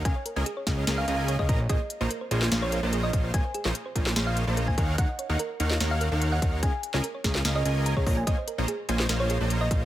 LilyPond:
<<
  \new Staff \with { instrumentName = "Synth pluck" } { \time 4/4 \key bes \minor \tempo 4 = 146 aes''8 r4. r16 f''8 r8 ees''8 r16 | ees''8 r4. r16 des''8 r8 ees''8 r16 | aes''8 r4. r16 f''8 r8 aes''8 r16 | ges''8 r4. r16 f''8 r8 ges''8 r16 |
aes''8 r4. r16 ees''8 r8 des''8 r16 | ees''8 r4. r16 des''8 r8 ees''8 r16 | }
  \new Staff \with { instrumentName = "Supersaw synth" } { \time 4/4 \key bes \minor <des' aes' bes' ees'' f''>16 r8 <des' aes' bes' ees'' aes''>16 r8 <des' aes' bes' ees'' f''>8 <des' aes' bes' ees'' f''>8 <des' aes' bes' ees'' aes''>8. <des' aes' bes' ees'' f''>16 <des' aes' bes' ees'' bes''>16 r16 | <bes f' c'' des'' ees'' aes''>16 r8 <bes f' c'' des'' ees'' bes''>16 r8 <bes f' c'' des'' ees'' aes''>8 <bes f' c'' des'' ees'' f''>8. <bes f' c'' des'' ees'' bes''>8. <bes f' c'' des'' ees'' f''>8 | <bes f' c'' des'' ees'' aes''>16 r8 <bes f' c'' des'' ees'' bes''>16 r8 <bes f' c'' des'' ees'' aes''>8 <bes f' c'' des'' ees'' f''>8. <bes f' c'' des'' ees'' bes''>8. <ees' bes' des'' f'' ges''>8 | <ees' bes' des'' f'' ges''>16 r8 <ees' bes' des'' f'' ges''>16 r8 <ees' bes' des'' f'' ges''>8 <ees' bes' des'' f'' ges''>8. <ees' bes' des'' f'' ges''>8. <ees' bes' des'' f'' ges''>8 |
<des' aes' bes' ees'' f''>16 r8 <des' aes' bes' ees'' aes''>16 r8 <des' aes' bes' ees'' f''>8 <des' aes' bes' ees'' f''>8 <des' aes' bes' ees'' aes''>8. <des' aes' bes' ees'' f''>16 <des' aes' bes' ees'' bes''>16 r16 | <bes f' c'' des'' ees'' aes''>16 r8 <bes f' c'' des'' ees'' bes''>16 r8 <bes f' c'' des'' ees'' aes''>8 <bes f' c'' des'' ees'' f''>8. <bes f' c'' des'' ees'' bes''>8. <bes f' c'' des'' ees'' f''>8 | }
  \new Staff \with { instrumentName = "Synth arpeggio sound" } { \time 4/4 \key bes \minor r16 des''16 bes'16 r16 aes'16 des''16 r16 des''16 bes'16 r16 f''16 f''16 des''16 aes'16 bes''16 des''16 | aes'16 r8 c''16 bes'16 c''16 aes'16 r8 c''16 bes'16 c''16 aes'16 r8 c''16 | bes'16 c''16 aes'16 r8 c''16 bes'16 c''16 aes'16 r8 c''16 bes'16 c''16 bes'16 r16 | r16 ees''16 des''16 ees''16 bes'16 r8 ees''16 des''16 ees''16 bes'16 r8 ees''16 des''16 ees''16 |
aes'16 r8 des''16 bes'16 des''16 aes'16 r8 des''16 bes'16 r16 bes''16 aes'16 des''16 aes''16 | r16 c''16 bes'16 c''16 aes'16 r8 c''16 bes'16 c''16 aes'16 r8 c''16 bes'16 c''16 | }
  \new Staff \with { instrumentName = "Analog synth bass" } { \clef bass \time 4/4 \key bes \minor des,16 r8 des,16 r8 des,8 des,8 des,8. des,16 bes,,8 | bes,,16 r8 bes,,16 r8 bes,,8 bes,,8. bes,,8. bes,,8 | bes,,16 r8 bes,,16 r8 bes,,8 bes,,8. bes,,8. ees,8 | ees,16 r8 ees,16 r8 ees,8 ees,8. ees,8. ees,8 |
des,16 r8 des,16 r8 des,8 des,8 des,8. des,16 bes,,8 | bes,,16 r8 bes,,16 r8 bes,,8 bes,,8. bes,,8. bes,,8 | }
  \new DrumStaff \with { instrumentName = "Drums" } \drummode { \time 4/4 <hh bd>8 hh8 hh8 <hh bd sn>8 <hh sn>8 hh8 hh16 bd16 <hh bd>8 | <hh bd>8 hh8 hh8 hh16 sn16 <hh sn>8 hh8 hh8 <hh bd>8 | <hh bd>8 hh16 sn16 hh8 <hh bd>16 sn16 <hh sn>8 hh8 hh16 bd16 <hh bd>8 | <hh bd>8 hh8 hh8 hh16 sn16 <hh sn>8 hh8 hh8 <hh bd>8 |
<hh bd>8 hh16 sn16 hh8 <hh bd sn>16 sn16 <hh sn>8 hh8 hh16 bd16 <hho bd>8 | <hh bd>8 hh8 hh8 hh16 sn16 <hh sn>8 hh8 hh8 <hh bd>8 | }
>>